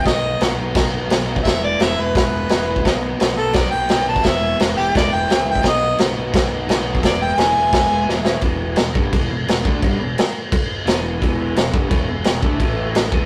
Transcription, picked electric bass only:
0.05 B1
0.41 B1
0.58 B1
0.75 B1
0.92 B1
1.10 B1
1.44 E1
1.80 E1
1.98 E1
2.15 E1
2.31 E1
2.52 E1
2.84 B1
3.21 B1
3.36 B1
3.54 B1
3.73 B1
3.90 B1
4.25 E1
4.60 E1
4.76 E1
4.95 E1
5.13 E1
5.31 C#2
5.64 B1
6.00 B1
6.17 B1
6.33 B1
6.51 B1
6.68 B1
7.02 E1
7.37 E1
7.55 E1
7.73 E1
7.91 E1
8.08 E1
8.42 E1
8.77 E1
8.95 G1
9.13 E1
9.31 E1
9.47 E1
9.66 D2
9.82 G1
10.00 E1
10.86 E1
11.22 E1
11.56 E1
11.74 G1
11.90 E1
12.09 E1
12.26 E1
12.42 D2
12.59 A1
13.12 E1

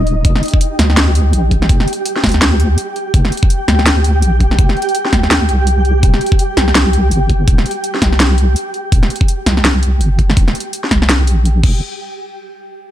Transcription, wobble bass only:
Already playing: D#1
0.25 F1
0.79 D2
1.33 A#1
1.69 F1
2.24 D2
3.14 F1
3.68 D2
4.23 A#1
4.59 F1
5.13 D2
5.49 C2
6.03 D#1
6.57 C2
7.11 G1
7.48 D#1
8.02 C2
8.92 D#1
9.46 C2
10.01 G1
10.37 D#1
10.91 C2
11.27 A#1
11.63 F1

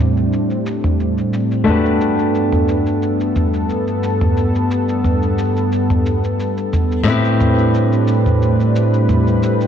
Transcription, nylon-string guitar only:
Already playing: A2 C4 E4 G4 B4
1.64 A3 D4 F#4
1.69 G4 B4
7.03 A2 C4 E4
7.08 G4 B4

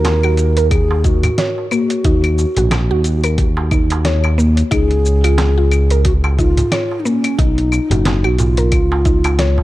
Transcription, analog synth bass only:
Already playing: D#2
2.04 D#2
2.57 A#1
2.91 D#2
4.72 C#2
7.39 B1
7.90 F#1
8.24 B1
8.72 C#2

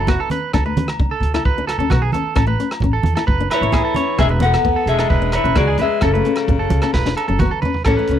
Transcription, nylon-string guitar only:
0.08 B3
0.31 C#4
0.54 D4
0.66 A3
0.77 C#4
1.00 D4
1.34 E4
1.58 D4
1.80 C#4
1.92 B3
2.15 C#4
2.36 C#4
2.47 A3
2.60 C#4
2.84 C#4
3.17 E4
3.40 D4
3.63 muted nylon-string guitar stroke
3.73 B3
3.96 C#4
4.18 B3
4.29 G#3
4.41 B3
4.65 B3
4.99 E4
5.22 D4
5.45 C#4
5.56 B3
5.79 C#4
6.01 C#4
6.15 A3
6.26 C#4
6.49 C#4
6.83 C#4
7.06 D4
7.29 C#4
7.42 B3
7.65 C#4
7.87 C#4
7.99 A3
8.11 C#4

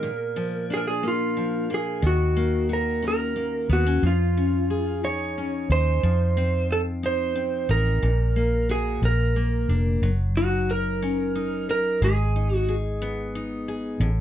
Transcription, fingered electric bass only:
2.03 D#2
3.69 D#2
4.03 F2
5.69 D#2
6.03 F2
7.69 A1
8.03 A#1
9.02 A#1
9.69 F1
10.02 F#1
12.02 G#1
14.00 A1

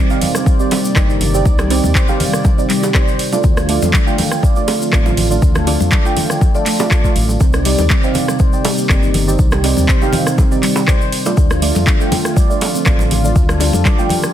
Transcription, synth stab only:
0.10 C4 D#4 G4 F5
0.60 C4 D#4 G4 D5
0.96 C4 D#4 G4 D5
1.34 C4 D#4 G4 D5
1.71 C4 D#4 G4 D5
2.09 C4 D#4 G4 F5
2.58 C4 D#4 G4 D5
2.94 C4 D#4 G4 D5
3.32 A3 D4 F4 D5
3.69 A3 D4 F4 D5
4.07 A3 D4 F4 G5
4.56 A3 D4 F4 D5
4.93 A3 D4 F4 D5
5.31 A3 D4 F4 D5
5.67 A3 D4 F4 D5
6.05 A3 D4 F4 G5
6.55 A3 D4 F4 D5
6.80 A3 D4 F4 D5
7.04 A3 D4 F4 D5
7.65 C4 D#4 G4 D5
8.04 C4 D#4 G4 F5
8.53 C4 D#4 G4 D5
8.90 C4 D#4 G4 D5
9.28 C4 D#4 G4 D5
9.64 C4 D#4 G4 D5
10.02 C4 D#4 G4 F5
10.52 C4 D#4 G4 D5
10.88 C4 D#4 G4 D5
11.26 A3 D4 F4 D5
11.62 A3 D4 F4 D5
12.00 A3 D4 F4 G5
12.50 A3 D4 F4 D5
12.86 A3 D4 F4 D5
13.24 A3 D4 F4 D5
13.61 A3 D4 F4 D5
13.98 A3 D4 F4 G5

